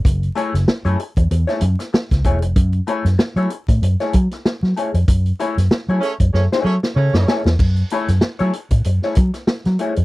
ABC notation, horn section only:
X:1
M:4/4
L:1/16
Q:"Swing 16ths" 1/4=95
K:F#m
V:1 name="Horn section"
z16 | z16 | z6 [A,CGc] z [A,CGc] z [A,CGc] z [A,CGc]3 z | z16 |]